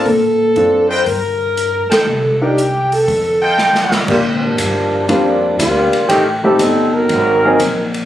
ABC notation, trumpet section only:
X:1
M:4/4
L:1/8
Q:"Swing" 1/4=119
K:Bb
V:1 name="Trumpet section"
z3 [F_ceg] z3 [EB=cg] | z4 z [FAeg]3 | z8 | z8 |]